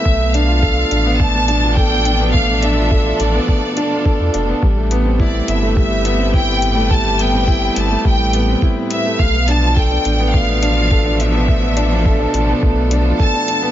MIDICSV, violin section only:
0, 0, Header, 1, 2, 480
1, 0, Start_track
1, 0, Tempo, 571429
1, 45, Time_signature, 4, 2, 24, 8
1, 11520, End_track
2, 0, Start_track
2, 0, Title_t, "Violin section"
2, 0, Program_c, 0, 48
2, 0, Note_on_c, 0, 76, 101
2, 255, Note_off_c, 0, 76, 0
2, 281, Note_on_c, 0, 77, 104
2, 999, Note_on_c, 0, 81, 122
2, 1004, Note_off_c, 0, 77, 0
2, 1476, Note_on_c, 0, 79, 123
2, 1482, Note_off_c, 0, 81, 0
2, 1953, Note_on_c, 0, 77, 111
2, 1961, Note_off_c, 0, 79, 0
2, 2182, Note_off_c, 0, 77, 0
2, 2199, Note_on_c, 0, 76, 98
2, 2672, Note_on_c, 0, 74, 90
2, 2682, Note_off_c, 0, 76, 0
2, 3639, Note_off_c, 0, 74, 0
2, 4365, Note_on_c, 0, 74, 81
2, 4588, Note_off_c, 0, 74, 0
2, 4604, Note_on_c, 0, 76, 90
2, 4829, Note_off_c, 0, 76, 0
2, 4839, Note_on_c, 0, 76, 98
2, 5289, Note_off_c, 0, 76, 0
2, 5323, Note_on_c, 0, 79, 119
2, 5800, Note_on_c, 0, 81, 122
2, 5804, Note_off_c, 0, 79, 0
2, 6043, Note_off_c, 0, 81, 0
2, 6046, Note_on_c, 0, 79, 114
2, 6526, Note_off_c, 0, 79, 0
2, 6530, Note_on_c, 0, 81, 105
2, 6768, Note_off_c, 0, 81, 0
2, 6768, Note_on_c, 0, 79, 103
2, 7213, Note_off_c, 0, 79, 0
2, 7486, Note_on_c, 0, 76, 100
2, 7709, Note_off_c, 0, 76, 0
2, 7720, Note_on_c, 0, 77, 112
2, 7963, Note_off_c, 0, 77, 0
2, 7965, Note_on_c, 0, 81, 110
2, 8204, Note_on_c, 0, 79, 106
2, 8206, Note_off_c, 0, 81, 0
2, 8683, Note_on_c, 0, 77, 107
2, 8685, Note_off_c, 0, 79, 0
2, 9403, Note_on_c, 0, 76, 89
2, 9404, Note_off_c, 0, 77, 0
2, 10364, Note_off_c, 0, 76, 0
2, 11086, Note_on_c, 0, 81, 114
2, 11520, Note_off_c, 0, 81, 0
2, 11520, End_track
0, 0, End_of_file